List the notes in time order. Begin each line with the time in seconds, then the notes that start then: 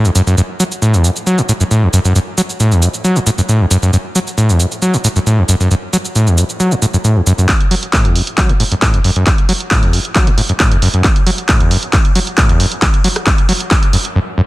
0.05 E2, shaker
0.15 F#2, shaker
0.27 F#2, shaker
0.38 F#2, shaker
0.60 F#3, shaker
0.72 shaker
0.82 A2, shaker
0.94 E2, shaker
1.04 F#2, shaker
1.16 shaker
1.27 F#3, shaker
1.38 F#2, shaker
1.49 A2, shaker
1.60 F#2, shaker
1.71 A2, shaker
1.83 E2
1.93 F#2, shaker
2.05 F#2, shaker
2.15 F#2, shaker
2.38 F#3, shaker
2.49 shaker
2.60 A2, shaker
2.72 E2, shaker
2.82 F#2, shaker
2.94 shaker
3.04 F#3, shaker
3.16 F#2, shaker
3.27 A2, shaker
3.38 F#2, shaker
3.49 A2, shaker
3.60 E2
3.71 F#2, shaker
3.83 F#2, shaker
3.93 F#2, shaker
4.15 F#3, shaker
4.27 shaker
4.38 A2, shaker
4.49 E2, shaker
4.60 F#2, shaker
4.72 shaker
4.82 F#3, shaker
4.94 F#2, shaker
5.04 A2, shaker
5.16 F#2, shaker
5.27 A2, shaker
5.38 E2
5.49 F#2, shaker
5.60 F#2, shaker
5.71 F#2, shaker
5.93 F#3, shaker
6.05 shaker
6.15 A2, shaker
6.27 E2, shaker
6.38 F#2, shaker
6.49 shaker
6.60 F#3, shaker
6.72 F#2, shaker
6.82 A2, shaker
6.94 F#2, shaker
7.04 A2, shaker
7.16 E2
7.27 F#2, shaker
7.38 F#2, shaker
7.49 kick, clap, closed hi-hat
7.61 closed hi-hat
7.71 F#3, open hi-hat
7.83 closed hi-hat
7.93 A2, kick, clap, closed hi-hat
8.05 E2, closed hi-hat
8.15 F#2, open hi-hat
8.27 closed hi-hat
8.38 F#3, kick, clap, closed hi-hat
8.49 F#2, closed hi-hat
8.60 A2, open hi-hat
8.72 F#2, closed hi-hat
8.82 A2, kick, clap, closed hi-hat
8.94 E2, closed hi-hat
9.04 F#2, open hi-hat
9.16 F#2, closed hi-hat
9.27 kick, clap, closed hi-hat
9.38 closed hi-hat
9.49 F#3, open hi-hat
9.60 closed hi-hat
9.71 A2, kick, clap, closed hi-hat
9.83 E2, closed hi-hat
9.93 F#2, open hi-hat
10.05 closed hi-hat
10.15 F#3, kick, clap, closed hi-hat
10.27 F#2, closed hi-hat
10.38 A2, open hi-hat
10.49 F#2, closed hi-hat
10.60 A2, kick, clap, closed hi-hat
10.72 E2, closed hi-hat
10.82 F#2, open hi-hat
10.94 F#2, closed hi-hat
11.04 kick, clap, closed hi-hat
11.16 closed hi-hat
11.27 F#3, open hi-hat
11.38 closed hi-hat
11.49 A2, kick, clap, closed hi-hat
11.60 E2, closed hi-hat
11.71 F#2, open hi-hat
11.83 closed hi-hat
11.93 F#2, kick, clap, closed hi-hat
12.05 closed hi-hat
12.15 F#3, open hi-hat
12.27 closed hi-hat
12.38 A2, kick, clap, closed hi-hat
12.49 E2, closed hi-hat
12.60 F#2, open hi-hat
12.72 closed hi-hat
12.82 F#2, kick, clap, closed hi-hat
12.94 closed hi-hat
13.04 F#3, open hi-hat
13.16 cross-stick, closed hi-hat
13.27 F#2, kick, clap, closed hi-hat
13.38 closed hi-hat
13.49 F#3, open hi-hat
13.60 closed hi-hat
13.71 F#2, kick, clap, closed hi-hat
13.83 closed hi-hat
13.93 F#2, open hi-hat
14.05 closed hi-hat
14.15 F#2
14.38 F#2